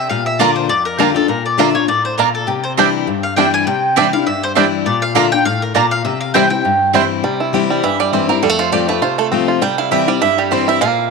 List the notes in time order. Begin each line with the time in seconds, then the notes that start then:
0.09 A#2 F5
0.26 E5
0.39 D3 A#3 D4 F4 D5 A#5
0.56 C5
0.69 F2 D5
0.85 A#4
0.99 D3 A#3 D4 F4 G4 D5 A#5
1.14 D4 F4 A4
1.28 A#2 A#4
1.46 D5
1.58 D3 A#3 D4 F4 D5 E5 A#5
1.75 D4 F4 C#5
1.88 A2 D5
2.05 C5
2.18 A#2 A#3 D4 F4 A#4 D5 A#5
2.35 A4
2.47 C3 G4
2.64 C5
2.77 E3 G3 C4 D4 E4 D5 G5
3.07 G2
3.23 F5
3.36 E3 G3 C4 D4 E4 D5 G5
3.54 G#5
3.67 C3 G5
3.96 E3 G3 C4 D4 E4 D5 G5
4.13 D4 E4 F5
4.26 G2 E5
4.43 C5
4.55 E3 G3 C4 D4 E4 D5 G5
4.86 A#2 D5
5.02 F5
5.15 D3 A#3 D4 F4 D5 E5 A#5
5.32 D4 F4 G5
5.45 A2 F5
5.62 A#4
5.75 A#2 A#3 D4 F4 D5 A#5
5.91 F5
6.05 C3 E5
6.21 F5
6.34 E3 G3 C4 E4 C5 G5
6.50 C4 E4 G5
6.65 G2
6.93 E3 G3 C4 E4 C5 G5
7.24 C3 G3
7.40 E4
7.53 E3 G3 C4 E4 G4
7.70 G3
7.83 G2 E3 E5
8.00 G3 D5
8.13 E3 G3 C4 E4 C5
8.28 C4 E4 A#4
8.43 F2 G3 A4
8.49 A3
8.59 F4 C5
8.72 F3 A3 C4 F4 G4 D5
8.88 A3 C4 F4 B4
9.02 C3 F4 C5
9.18 A3 A4
9.32 F3 A3 C4 F4
9.48 F4
9.61 C3 G3 G5
9.78 E4 F5
9.91 E3 G3 C4 E4 G4 E5
10.07 G3 C4 E4 D5
10.21 G2 E4 E5
10.38 G3 G4
10.51 E3 G3 C4 E4 C5
10.68 E4 E5
10.81 A#2 G#3 F5
10.88 A#3